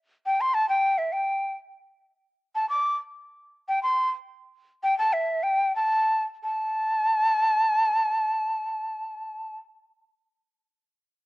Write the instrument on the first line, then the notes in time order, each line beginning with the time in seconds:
quena
0.26 G5
0.41 C6
0.54 A5
0.69 G5
0.98 E5
1.12 G5
2.55 A5
2.69 D6
3.68 G5
3.83 C6
4.83 G5
4.98 A5
5.13 E5
5.43 G5
5.76 A5
6.43 A5